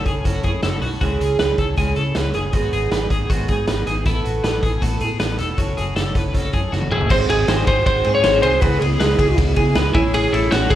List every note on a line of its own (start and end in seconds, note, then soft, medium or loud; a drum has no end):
0.05 0.22 F#1 medium
0.05 0.24 C#4 soft
0.05 0.25 E4 soft
0.05 0.25 G#4 medium
0.05 0.25 A4 medium
0.05 kick medium
0.05 closed hi-hat medium
0.24 0.41 F#1 medium
0.24 0.44 F#3 medium
0.24 0.44 C#4 medium
0.24 0.45 E4 medium
0.24 0.44 F#4 medium
0.24 0.42 A4 medium
0.24 kick medium
0.24 closed hi-hat medium
0.43 0.60 F#2 medium
0.43 0.64 E4 medium
0.43 0.63 G#4 medium
0.43 0.63 A4 medium
0.43 kick medium
0.43 closed hi-hat medium
0.47 0.63 C#4 medium
0.63 0.79 F#1 medium
0.63 0.82 F#3 medium
0.63 0.83 C#4 medium
0.63 0.83 E4 medium
0.63 0.81 A4 medium
0.63 snare loud
0.63 closed hi-hat medium
0.82 0.98 B1 medium
0.82 1.02 E4 soft
0.82 1.00 F#4 medium
0.82 1.01 A4 soft
0.82 open hi-hat medium
0.86 1.01 C#4 soft
1.01 1.17 C#2 medium
1.01 1.58 C#3 medium
1.01 1.76 G#3 medium
1.01 1.59 C#4 medium
1.01 1.59 E4 medium
1.01 1.21 F#4 medium
1.01 1.57 G#4 medium
1.01 kick medium
1.01 closed hi-hat medium
1.20 1.36 C#2 medium
1.20 1.39 G#4 medium
1.20 closed hi-hat medium
1.39 1.55 C#2 medium
1.39 1.58 B4 medium
1.39 snare loud
1.39 closed hi-hat medium
1.58 1.74 C#2 medium
1.58 1.76 C#4 soft
1.58 1.77 E4 medium
1.58 1.77 G#4 soft
1.58 1.77 A4 medium
1.58 kick medium
1.58 closed hi-hat medium
1.76 1.93 C#2 medium
1.76 1.96 C#3 medium
1.76 1.96 G#3 medium
1.76 1.96 C#4 medium
1.76 1.96 E4 medium
1.76 1.96 G#4 medium
1.76 1.94 G#4 medium
1.76 kick medium
1.76 snare soft
1.76 closed hi-hat medium
1.95 2.12 C#3 medium
1.95 2.15 C#4 soft
1.95 2.16 E4 medium
1.95 2.15 G#4 medium
1.95 2.16 A4 medium
1.95 closed hi-hat medium
2.15 2.31 C#2 medium
2.15 2.34 G#3 medium
2.15 2.35 C#4 medium
2.15 2.35 E4 medium
2.15 2.33 G#4 medium
2.15 2.34 B4 medium
2.15 snare loud
2.15 closed hi-hat medium
2.34 2.50 F#1 medium
2.34 2.54 C#4 soft
2.34 2.54 E4 soft
2.34 2.53 G#4 medium
2.34 2.54 G#4 medium
2.34 closed hi-hat medium
2.52 2.69 G#1 medium
2.52 3.10 G#2 medium
2.52 3.11 D#3 medium
2.52 3.11 F#3 medium
2.52 3.12 B3 medium
2.52 3.11 D#4 medium
2.52 2.73 F#4 medium
2.52 3.09 G#4 medium
2.52 kick medium
2.52 closed hi-hat medium
2.72 2.88 G#1 loud
2.72 2.92 G#4 medium
2.72 closed hi-hat medium
2.91 3.07 G#1 medium
2.91 3.10 B4 medium
2.91 snare loud
2.91 closed hi-hat medium
3.10 3.26 G#1 medium
3.10 3.30 F#3 soft
3.10 3.31 B3 soft
3.10 3.30 D#4 soft
3.10 3.30 G#4 medium
3.10 kick medium
3.10 closed hi-hat medium
3.30 3.45 G#1 medium
3.30 3.49 G#2 medium
3.30 3.49 D#3 medium
3.30 3.50 F#3 medium
3.30 3.50 B3 medium
3.30 3.49 D#4 medium
3.30 3.49 F#4 medium
3.30 3.48 G#4 medium
3.30 kick medium
3.30 closed hi-hat medium
3.48 3.65 G#2 medium
3.48 3.67 B3 medium
3.48 3.68 D#4 medium
3.48 3.67 G#4 medium
3.48 3.68 G#4 medium
3.48 kick medium
3.48 closed hi-hat medium
3.52 3.66 F#3 medium
3.67 3.83 G#1 medium
3.67 3.87 F#3 medium
3.67 3.87 B3 medium
3.67 3.87 D#4 medium
3.67 3.85 G#4 medium
3.67 3.87 B4 medium
3.67 snare loud
3.67 closed hi-hat medium
3.86 4.03 G#1 medium
3.86 4.06 B3 soft
3.86 4.06 D#4 soft
3.86 4.05 G#4 medium
3.86 4.06 G#4 medium
3.86 closed hi-hat medium
3.90 4.06 F#3 soft
4.05 4.21 A1 medium
4.05 4.69 A3 medium
4.05 4.64 B3 medium
4.05 4.25 E4 medium
4.05 4.64 E4 loud
4.05 4.62 A4 loud
4.05 kick loud
4.05 closed hi-hat medium
4.25 4.41 A1 medium
4.25 4.44 F#4 medium
4.25 closed hi-hat medium
4.44 4.60 A1 medium
4.44 4.62 B4 medium
4.44 snare loud
4.44 closed hi-hat medium
4.62 4.79 A1 loud
4.62 4.81 B3 soft
4.62 4.81 E4 soft
4.62 4.82 G#4 medium
4.62 4.82 A4 medium
4.62 kick medium
4.62 closed hi-hat medium
4.80 4.98 A1 medium
4.80 5.00 A3 medium
4.80 5.01 B3 medium
4.80 5.01 E4 medium
4.80 5.01 F#4 medium
4.80 4.99 A4 medium
4.80 kick medium
4.80 closed hi-hat medium
5.00 5.16 A2 medium
5.00 5.19 B3 soft
5.00 5.20 E4 medium
5.00 5.19 G#4 medium
5.00 5.20 A4 medium
5.00 closed hi-hat medium
5.18 5.36 A1 medium
5.18 5.38 A3 medium
5.18 5.39 B3 medium
5.18 5.39 E4 medium
5.18 5.37 A4 medium
5.18 5.39 B4 medium
5.18 snare loud
5.18 closed hi-hat medium
5.38 5.55 E1 medium
5.38 5.57 B3 soft
5.38 5.57 E4 medium
5.38 5.58 A4 medium
5.38 closed hi-hat medium
5.57 5.74 F#1 medium
5.57 6.20 F#3 medium
5.57 6.15 C#4 medium
5.57 6.15 E4 medium
5.57 5.77 F#4 medium
5.57 6.13 A4 medium
5.57 kick loud
5.57 closed hi-hat medium
5.77 5.93 F#1 loud
5.77 5.96 G#4 medium
5.77 closed hi-hat medium
5.96 6.12 F#1 medium
5.96 6.15 A4 medium
5.96 snare loud
5.96 closed hi-hat medium
6.14 6.31 F#1 medium
6.14 6.33 C#4 soft
6.14 6.34 E4 soft
6.14 6.34 A4 soft
6.14 6.34 B4 medium
6.14 kick medium
6.14 closed hi-hat medium
6.33 6.50 F#1 medium
6.33 6.53 F#3 medium
6.33 6.53 C#4 medium
6.33 6.53 E4 medium
6.33 6.53 A4 medium
6.33 6.51 A4 medium
6.33 kick medium
6.33 snare soft
6.33 closed hi-hat medium
6.52 6.69 F#2 medium
6.52 6.71 C#4 medium
6.52 6.73 E4 medium
6.52 6.72 G#4 medium
6.52 6.72 A4 medium
6.52 kick medium
6.52 closed hi-hat medium
6.71 6.88 F#1 medium
6.71 7.10 F#3 medium
6.71 7.10 C#4 medium
6.71 7.11 E4 medium
6.71 6.91 F#4 medium
6.71 7.11 A4 medium
6.71 snare soft
6.82 high tom soft
6.91 7.07 F#1 medium
6.91 7.10 E4 medium
6.91 7.09 G#4 medium
6.91 mid tom medium
7.01 floor tom medium
7.09 7.26 G#1 loud
7.09 7.29 G#2 medium
7.09 7.29 D#3 medium
7.09 7.30 F#3 medium
7.09 8.61 C4 medium
7.09 7.30 C4 loud
7.09 7.29 D#4 medium
7.09 7.29 F#4 loud
7.09 8.61 F#4 medium
7.09 10.75 G#4 medium
7.09 7.28 G#4 loud
7.09 7.16 C5 loud
7.09 kick loud
7.09 crash loud
7.29 7.45 G#1 loud
7.29 7.46 F#3 soft
7.29 7.47 C4 medium
7.29 7.48 D#4 medium
7.29 7.48 G#4 medium
7.29 7.69 G#4 medium
7.29 ride medium
7.47 7.64 G#1 loud
7.47 7.67 F#3 medium
7.47 7.67 C4 medium
7.47 7.66 D#4 medium
7.47 7.65 G#4 medium
7.47 7.67 C5 medium
7.47 snare loud
7.47 ride medium
7.66 7.83 G#1 loud
7.66 8.06 F#3 soft
7.66 8.06 C4 medium
7.66 8.04 D#4 medium
7.66 8.04 G#4 medium
7.66 7.85 G#4 medium
7.66 7.85 C5 loud
7.66 kick medium
7.66 ride medium
7.86 8.02 G#1 medium
7.86 8.05 F#4 medium
7.86 8.14 C5 loud
7.86 kick loud
7.86 ride medium
8.04 8.21 G#2 medium
8.04 8.22 F#3 medium
8.04 8.23 C4 medium
8.04 8.24 D#4 medium
8.04 8.24 G#4 medium
8.04 ride medium
8.15 8.41 C#5 loud
8.23 8.40 G#1 loud
8.23 8.61 F#3 medium
8.23 8.62 C4 medium
8.23 8.62 D#4 medium
8.23 8.63 G#4 medium
8.23 8.43 C5 medium
8.23 snare loud
8.23 ride medium
8.42 8.59 C2 loud
8.42 8.62 G#4 loud
8.42 8.61 C5 loud
8.42 ride medium
8.60 8.78 C#2 loud
8.60 9.93 C#3 medium
8.60 8.80 C#3 medium
8.60 8.81 G#3 loud
8.60 9.93 B3 medium
8.60 8.81 B3 medium
8.60 9.93 E4 medium
8.60 8.81 E4 medium
8.60 8.81 F#4 medium
8.60 8.79 G#4 loud
8.60 8.79 B4 medium
8.60 9.93 D#5 medium
8.60 kick loud
8.60 ride medium
8.79 8.97 C#2 loud
8.79 9.00 E4 soft
8.79 9.37 G#4 medium
8.79 8.99 G#4 medium
8.79 9.00 G#4 medium
8.79 ride medium
8.83 9.00 B3 medium
8.99 9.16 C#2 loud
8.99 9.18 G#3 medium
8.99 9.19 B3 medium
8.99 9.18 E4 medium
8.99 9.19 B4 medium
8.99 snare loud
8.99 ride medium
9.03 9.16 G#4 medium
9.18 9.34 C#2 loud
9.18 9.58 B3 soft
9.18 9.57 E4 soft
9.18 9.55 G#4 medium
9.18 9.38 G#4 medium
9.18 kick loud
9.18 ride medium
9.38 9.53 C#2 loud
9.38 9.56 F#4 medium
9.38 kick loud
9.38 snare soft
9.38 ride medium
9.56 9.72 C#3 medium
9.56 9.75 B3 medium
9.56 9.76 E4 medium
9.56 9.75 G#4 medium
9.56 9.76 G#4 loud
9.56 kick medium
9.56 ride medium
9.74 9.91 C#2 loud
9.74 9.94 G#3 medium
9.74 9.95 B3 medium
9.74 9.94 E4 medium
9.74 9.93 G#4 medium
9.74 9.95 B4 medium
9.74 snare loud
9.74 ride medium
9.93 10.26 A1 loud
9.93 10.75 A3 medium
9.93 10.33 A3 medium
9.93 10.75 C#4 medium
9.93 10.33 C#4 medium
9.93 10.14 E4 medium
9.93 10.33 E4 medium
9.93 10.31 G#4 medium
9.93 10.13 G#4 loud
9.93 kick loud
9.93 ride medium
10.14 10.32 G#4 loud
10.14 10.33 G#4 loud
10.14 ride medium
10.32 10.48 A1 loud
10.32 10.52 C#4 soft
10.32 10.51 E4 medium
10.32 10.52 E4 medium
10.32 10.51 G#4 medium
10.32 10.51 A4 medium
10.32 ride medium
10.51 10.67 A1 loud
10.51 10.70 A3 medium
10.51 10.71 C#4 medium
10.51 10.71 E4 medium
10.51 10.71 F#4 loud
10.51 10.70 C#5 medium
10.51 snare loud
10.51 ride medium
10.55 10.70 G#4 medium
10.70 10.75 A1 loud
10.70 10.75 G#4 loud
10.70 10.75 G#4 medium
10.70 10.75 A4 medium
10.70 kick loud
10.70 ride medium